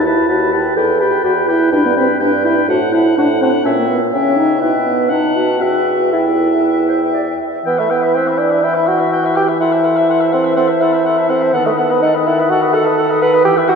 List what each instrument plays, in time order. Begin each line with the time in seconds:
Already playing: bassoon D#2
0.04 french horn E4, clarinet B4, oboe A5, flute B5
0.28 bassoon D#2, french horn F#4, clarinet B4, oboe A5, flute B5
0.52 french horn G4, clarinet B4, oboe A5, flute B5
0.75 bassoon E2, french horn A4, clarinet B4, oboe G5, flute B5
0.99 french horn G4, clarinet B4, oboe G5, flute B5
1.24 bassoon E2, french horn F#4, clarinet B4, oboe G5, flute B5
1.48 french horn E4, clarinet B4, oboe G5, flute B5
1.71 bassoon G2, french horn D4, clarinet B4, oboe G5, flute B5
1.86 french horn B3
1.96 french horn C4, clarinet B4, oboe G5, flute B5
2.20 bassoon G2, french horn D4, clarinet B4, oboe G5, flute B5
2.44 french horn E4, clarinet B4, oboe G5, flute B5
2.68 bassoon A2, french horn F#4, clarinet C5, oboe F#5, flute A5
2.92 french horn E4, clarinet C5, oboe F#5, flute A5
3.16 bassoon A2, french horn D4, clarinet C5, oboe F#5, flute A5
3.40 french horn C4, clarinet C5, oboe F#5, flute A5
3.64 bassoon A#2, french horn C#4, clarinet C#5, oboe E5, flute G5
3.77 french horn A#3
3.89 french horn B3
4.12 bassoon C#3, french horn C#4, clarinet C#5, oboe E5, flute G5
4.37 french horn D#4
4.59 bassoon B2, french horn E4, clarinet B4, oboe E5, flute G5
4.85 french horn B3
5.09 bassoon B2, french horn D#4, clarinet B4, oboe F#5, flute A5
5.36 french horn F#4
5.60 bassoon E2, french horn F#4, clarinet B4, oboe E5, flute G5
6.11 french horn E4, clarinet A4, oboe E5, flute G5
6.26 clarinet G4
6.37 clarinet A4
6.62 clarinet B4
6.88 clarinet C5
7.14 clarinet D5
7.40 clarinet E5
7.65 french horn E3, bassoon B3, clarinet B4, oboe G5, flute E6
7.78 bassoon A3, oboe E5, clarinet E5, flute B5
7.90 bassoon B3, clarinet B4, oboe G5, flute E6
8.02 oboe E5, clarinet E5, flute B5
8.14 bassoon C4, clarinet B4, oboe G5, flute E6
8.27 oboe E5, clarinet E5, flute B5
8.38 bassoon D4, clarinet B4, oboe G5, flute E6
8.50 oboe E5, clarinet E5, flute B5
8.61 bassoon E4, clarinet B4, oboe G5, flute E6
8.74 clarinet E5, oboe E5, flute B5
8.86 bassoon F#4, clarinet B4, oboe G5, flute E6
8.97 oboe E5, clarinet E5, flute B5
9.10 clarinet B4, oboe G5, flute E6
9.24 clarinet E5, oboe E5, flute B5
9.35 bassoon G4, clarinet B4, oboe G5, flute E6
9.48 clarinet E5, oboe E5, flute B5
9.60 bassoon E4, clarinet A4, oboe F#5, flute C6
9.71 clarinet C5, oboe E5, flute A5
9.85 clarinet A4, oboe F#5, flute C6
9.96 clarinet C5, oboe E5, flute A5
10.08 clarinet A4, oboe F#5, flute C6
10.19 clarinet C5, oboe E5, flute A5
10.32 bassoon C4, clarinet A4, oboe F#5, flute C6
10.44 clarinet C5, oboe E5, flute A5
10.56 bassoon C4, clarinet A4, oboe F#5, flute C6
10.68 clarinet C5, oboe E5, flute A5
10.81 bassoon E4, clarinet A4, oboe F#5, flute C6
10.93 clarinet C5, oboe E5, flute A5
11.05 clarinet A4, oboe F#5, flute C6
11.18 clarinet C5, oboe E5, flute A5
11.29 bassoon C4, clarinet A4, oboe F#5, flute C6
11.41 clarinet C5, oboe E5, flute A5
11.53 french horn D#3, bassoon B3, clarinet A4, oboe F#5, flute A5
11.65 bassoon A3, clarinet B4, oboe D#5, flute B5
11.78 bassoon B3, clarinet A4, oboe F#5, flute A5
11.90 clarinet B4, oboe D#5, flute B5
12.02 bassoon D#4, clarinet A4, oboe F#5, flute A5
12.14 clarinet B4, oboe D#5, flute B5
12.26 bassoon E4, clarinet A4, oboe F#5, flute A5
12.39 clarinet B4, oboe D#5, flute B5
12.50 bassoon F#4, clarinet A4, oboe F#5, flute A5
12.61 clarinet B4, oboe D#5, flute B5
12.73 bassoon A4, clarinet A4, oboe F#5, flute A5
12.85 clarinet B4, oboe D#5, flute B5
12.97 clarinet A4, oboe F#5, flute A5
13.10 clarinet B4, oboe D#5, flute B5
13.22 clarinet A4, bassoon B4, oboe F#5, flute A5
13.34 clarinet B4, oboe D#5, flute B5
13.44 french horn E3, bassoon G4, clarinet G4, oboe G5, flute E6
13.57 clarinet B4, oboe E5, flute B5
13.68 bassoon F#4, clarinet G4, oboe G5, flute E6